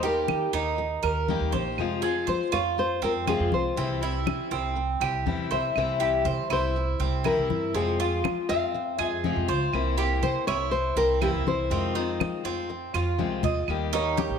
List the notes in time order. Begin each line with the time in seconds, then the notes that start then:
Already playing: D#2
0.03 G3 A#3 D#4 G4 A#4, high conga
0.28 D#3, high conga, claves
0.53 D#2 A#3 D#4 G4
0.78 muted steel-string acoustic guitar stroke, high conga
1.03 D#2 A#3 D#4 G4 A#4, high conga, claves
1.28 D#3 G3 A#3 D#4 G4, high conga
1.40 D#2
1.52 A#1 A#3 D#4 G4 C5, high conga
1.78 F2 C3 F3 G#3 C4 F4, high conga, claves
2.02 F3 G#3 C4 F4 G#4, high conga
2.27 F3 C5, high conga
2.52 F2 G#3 C4 F4 C#5, high conga, claves
2.78 C5, muted steel-string acoustic guitar stroke, high conga
3.02 F2 G#3 C4 F4 A#4, high conga
3.27 C3 F3 G#3 C4 F4 G#4, high conga, claves
3.40 F2
3.52 C2 G#3 C4 F4 C5, high conga
3.77 C2 C3 E3 G3 C4 E4, high conga
4.01 E3 G3 C4 E4, high conga
4.26 C3, high conga, claves
4.51 C2 G3 C4 E4
4.75 muted steel-string acoustic guitar stroke, high conga
5.01 C2 G3 C4 E4 G4, high conga, claves
5.26 E2 C3 E3 G3 C4 E4, high conga
5.50 C2 G3 C4 E4 C5 E5
5.76 C2 C3 E3 G3 C4 E4 E5, high conga, claves
6.00 E3 G3 C4 E4 G4, high conga
6.25 C3 C5, high conga
6.50 C2 G3 C4 E4 C5, high conga, claves
6.75 muted steel-string acoustic guitar stroke, high conga
7.00 C2 G3 C4 E4, high conga
7.24 C3 E3 G3 C4 E4 A#4, high conga, claves
7.37 C2
7.50 G2 G3 C4 E4, high conga
7.74 F2 C3 F3 G#3 C4 F4 G#4, high conga
8.00 F3 G#3 C4 F4, high conga
8.24 F3, high conga, claves
8.49 F2 G#3 C4 F4 F5
8.74 muted steel-string acoustic guitar stroke, high conga
8.98 F2 G#3 C4 F4 G#4 D#5, high conga, claves
9.24 C3 F3 G#3 C4 F4, high conga
9.36 F2
9.48 C#2 G#3 C4 F4 C5
9.73 C2 C3 E3 A#3 C4 E4, high conga, claves
9.97 E3 A#3 C4 E4 G4, high conga
10.22 C3 C5, high conga
10.47 C2 A#3 C4 E4 C#5, high conga, claves
10.71 C5, muted steel-string acoustic guitar stroke, high conga
10.96 C2 A#3 C4 E4 A#4, high conga
11.21 C3 E3 A#3 C4 E4 G4, high conga, claves
11.34 C2
11.46 C2 A#3 C4 E4 C5, high conga
11.70 F2 C3 D#3 G#3 C4 F4, high conga
11.95 D#3 G#3 C4 D#4 F4, high conga
12.20 F3, high conga, claves
12.44 F2 G#3 C4 F4
12.69 muted steel-string acoustic guitar stroke, high conga
12.94 F2 G#3 C4 F4, high conga, claves
13.18 C2 C3 D#3 G#3 C4 F4, high conga
13.43 D#2 G#3 C4 F4 D#5, low conga
13.68 D#2 D#3 G3 A#3 D#4 G4, high conga, claves
13.93 G3 A#3 D#4 G4 C#5, high conga
14.17 G4, high conga
14.29 A#1